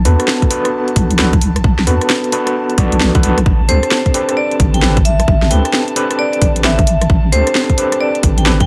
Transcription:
Already playing: A5
0.05 E2 B3 D4 F#4 A4 B4, open hi-hat
0.20 cross-stick, closed hi-hat
0.28 snare
0.42 kick, closed hi-hat
0.51 B3 D4 F#4 A4 B4, open hi-hat
0.65 cross-stick, closed hi-hat
0.88 closed hi-hat
0.96 B1, kick, open hi-hat
1.11 closed hi-hat
1.19 B3 D4 F#4 A4 B4, snare
1.33 kick, closed hi-hat
1.41 open hi-hat
1.56 cross-stick, closed hi-hat
1.64 B1, kick
1.79 snare
1.87 E2 B3 D4 F#4 A4 B4, open hi-hat
2.01 cross-stick, closed hi-hat
2.10 snare
2.24 closed hi-hat
2.32 B3 D4 F#4 A4 B4, open hi-hat
2.47 cross-stick, closed hi-hat
2.70 closed hi-hat
2.78 B1 B3 D4 F#4 A4 D5, kick, open hi-hat
2.92 closed hi-hat
3.00 snare
3.15 B3 D4 F#4 A4 B4, kick, closed hi-hat
3.23 B3 D4 F#4 A4 B4, open hi-hat
3.38 cross-stick, closed hi-hat
3.46 A1, kick
3.69 D2 C4 D4 G4 A4 C5, open hi-hat
3.83 cross-stick, closed hi-hat
3.91 snare
4.06 kick, closed hi-hat
4.14 C4 D4 G4 A4 B4, open hi-hat
4.29 cross-stick, closed hi-hat
4.37 D5
4.51 closed hi-hat
4.60 A1, kick, open hi-hat
4.74 G5, closed hi-hat
4.82 C4 D4 G4 A4 B4, snare
4.97 kick, closed hi-hat
5.05 E5, open hi-hat
5.20 cross-stick, closed hi-hat
5.28 A1, kick
5.42 snare
5.51 D2 C4 D4 G4 A4 B4 G5, open hi-hat
5.65 G5, cross-stick, closed hi-hat
5.73 snare
5.88 closed hi-hat
5.96 C4 D4 G4 A4 B4, open hi-hat
6.11 cross-stick, closed hi-hat
6.19 D5
6.33 D5, closed hi-hat
6.42 A1, kick, open hi-hat
6.56 closed hi-hat
6.64 C4 D4 G4 A4 B4 E5, snare
6.79 kick, closed hi-hat
6.87 open hi-hat
7.02 cross-stick, closed hi-hat
7.10 A1, kick
7.32 D2 C4 D4 G4 A4 C5, open hi-hat
7.47 cross-stick, closed hi-hat
7.55 snare
7.70 kick, closed hi-hat
7.78 C4 D4 G4 A4 B4, open hi-hat
7.92 cross-stick, closed hi-hat
8.00 D5
8.15 closed hi-hat
8.23 A1, kick, open hi-hat
8.38 G5, closed hi-hat
8.46 C4 D4 G4 A4 B4, snare
8.60 G5, kick, closed hi-hat

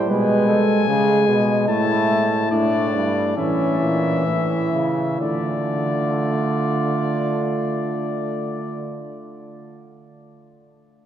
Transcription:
Already playing: C5
0.10 B2 G#3 B4 G#5
0.48 A4
0.88 C#3 G#3 G#4
1.28 B2
1.68 A2 A3 E4 A5
2.51 A2 A3 D4 D5
2.94 G2
3.37 A2 E3 C#4 E5
3.82 A#2
4.26 A2 E4
4.73 C#3
5.20 D3 A3 F4 D5

